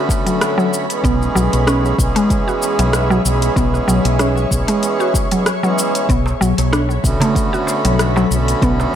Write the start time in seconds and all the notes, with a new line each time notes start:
Already playing: D3 A3 B3 C#4 F#4 A4 C#5 B5
0.09 kick, shaker
0.26 F#3, closed hi-hat, shaker
0.41 cross-stick, closed hi-hat, shaker
0.58 F#3, shaker
0.74 shaker
0.88 E3 G#3 B3 C#4, closed hi-hat, shaker
0.92 G#4
1.04 B1 B3 G#4 E5, kick, closed hi-hat, shaker
1.22 shaker
1.35 B1 F#3, shaker
1.53 B1, closed hi-hat, shaker
1.67 C#4, cross-stick, closed hi-hat, shaker
1.85 shaker
1.97 B1 E3 G#3 B3 C#4 G#4, kick, shaker
2.16 G#3, closed hi-hat, shaker
2.30 kick, closed hi-hat, shaker
2.48 F#4, shaker
2.62 shaker
2.79 B1 F#3, closed hi-hat, shaker
2.93 cross-stick, closed hi-hat, shaker
3.10 F#3, shaker
3.23 B1 E3 G#3 B3 C#4 G#4, shaker
3.42 closed hi-hat, shaker
3.56 B1 B3 C#6, kick, closed hi-hat, shaker
3.74 cross-stick, shaker
3.88 B1 F#3, shaker
4.05 B1, closed hi-hat, shaker
4.19 C#4, cross-stick, closed hi-hat, shaker
4.37 shaker
4.49 B1 E3 G#3 B3 C#4 G#4, kick, shaker
4.68 G#3, closed hi-hat, shaker
4.83 closed hi-hat, shaker
5.00 F#4, shaker
5.14 kick, shaker
5.30 E3 F#3 G#3 B3 C#4 G#4, closed hi-hat, shaker
5.46 cross-stick, closed hi-hat, shaker
5.61 E3 F#3 G#3 B3 C#4 G#4, shaker
5.79 shaker
5.95 closed hi-hat, shaker
6.09 B1 B3 A4 B5, kick, closed hi-hat, shaker
6.26 darbuka tek, shaker
6.41 B1 F#3, shaker
6.58 B1, closed hi-hat, darbuka ka, shaker
6.73 D4, cross-stick, closed hi-hat, shaker
6.90 shaker
7.02 B1 D3 A3 B3 C#4 F#4, kick, shaker
7.20 A3, closed hi-hat, darbuka tek, darbuka dum, shaker
7.35 kick, closed hi-hat, shaker
7.53 F#4, shaker
7.67 darbuka ka, darbuka tek, shaker
7.85 B1 F#3, closed hi-hat, shaker
7.99 cross-stick, closed hi-hat, shaker
8.16 F#3, darbuka tek, shaker
8.29 B1 D3 A3 B3 C#4 F#4, shaker
8.48 closed hi-hat, shaker
8.62 B1 B3, kick, closed hi-hat, shaker
8.80 cross-stick, darbuka tek, shaker